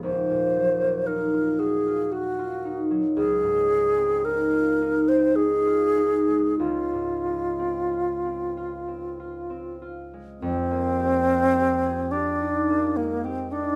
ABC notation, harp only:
X:1
M:3/4
L:1/16
Q:1/4=53
K:Ebdor
V:1 name="Harp"
[E,,,E,,F,EF] B,, G, B, E F G F G F E G, | [K:Fm] D,, A,, A, C E F E C E F E A, | D,, A,, A, C F C F C F C F A, | F,, B, G F G A G E B, A, G E |]